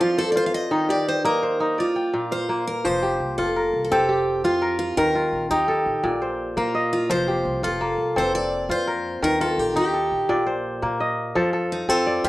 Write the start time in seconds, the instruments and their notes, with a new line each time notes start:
Already playing: kora C4 F4 A4 D5
0.00 kora F3, steel-string acoustic guitar F4
0.18 steel-string acoustic guitar A4, kora C5
0.32 kora F4, steel-string acoustic guitar D5
0.37 steel-string acoustic guitar C5
0.46 steel-string acoustic guitar F5
0.54 steel-string acoustic guitar D#5
0.71 kora D#3 D#4
0.89 kora G4, steel-string acoustic guitar D5
1.08 steel-string acoustic guitar C5
1.24 kora A#3 D#4, steel-string acoustic guitar A#4
1.43 kora C5
1.60 kora D#4
1.78 steel-string acoustic guitar F4, kora D5
1.96 kora G5
2.14 kora A#2
2.31 steel-string acoustic guitar C5, kora F5
2.49 kora A#3
2.67 steel-string acoustic guitar A#4
2.85 upright bass F1, kora F3 C5, steel-string acoustic guitar C5
3.03 kora G4
3.20 upright bass C2
3.38 upright bass F1, kora F4, steel-string acoustic guitar A4
3.56 kora A#4
3.73 upright bass C2
3.84 steel-string acoustic guitar A4
3.91 upright bass F1, kora C4 A4, steel-string acoustic guitar G4
4.09 kora G4
4.44 upright bass F2, kora F4, steel-string acoustic guitar F4
4.62 kora A#4
4.79 steel-string acoustic guitar F4
4.97 upright bass D#2, kora D#3 A#4, steel-string acoustic guitar A#4
5.15 kora F4
5.33 upright bass A#1
5.50 upright bass D#2, kora D#4, steel-string acoustic guitar G4
5.68 kora A4
5.86 upright bass A#1
6.03 upright bass A#1, kora A#2 D5
6.22 kora C5
6.57 upright bass A#2, kora A#3, steel-string acoustic guitar F4
6.75 kora D#5
6.93 steel-string acoustic guitar F4
7.10 upright bass F1, kora F3 C5, steel-string acoustic guitar C5
7.28 kora G4
7.45 upright bass C2
7.63 upright bass F1, kora F4, steel-string acoustic guitar A4
7.81 kora A#3
7.98 upright bass C2
8.16 upright bass F1, kora C4 A4, steel-string acoustic guitar C5
8.35 steel-string acoustic guitar D5
8.69 upright bass F2, kora F4, steel-string acoustic guitar C5
8.87 kora A#4
9.22 upright bass D#2, kora D#3 A#4, steel-string acoustic guitar A#4
9.40 kora F4, steel-string acoustic guitar A4
9.58 upright bass A#1, steel-string acoustic guitar G4
9.75 upright bass D#2, kora D#4, steel-string acoustic guitar G4
9.94 kora A4
10.12 upright bass A#1
10.29 upright bass A#1, kora A#2 D5
10.46 kora C5
10.82 upright bass A#2, kora A#3
11.00 kora D#5
11.35 upright bass F2, kora F3 A4
11.53 kora A4
11.72 steel-string acoustic guitar D#4
11.88 upright bass F2, kora C4 A4, steel-string acoustic guitar F4
12.07 kora D5
12.24 upright bass F2, kora F4, steel-string acoustic guitar G4